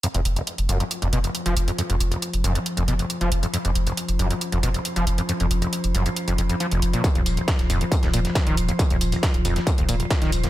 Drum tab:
HH |xxxxxxxxxxxxxxxx|xxxxxxxxxxxxxxxx|xxxxxxxxxxxxxxxx|xxxxxxxxxxxxxxxx|
TB |----------------|----------------|----------------|----------------|
SD |----------------|----------------|----------------|----------------|
BD |----------------|----------------|----------------|----------------|

HH |xxoxxxoxxxoxxxox|xxoxxxoxxxoxxxox|
TB |x-x-x-x-x-x-x-x-|x-x-x-x-x-x-x-x-|
SD |----oo---o-oo---|----o--o----oo-o|
BD |o---o---o---o---|o---o---o---o---|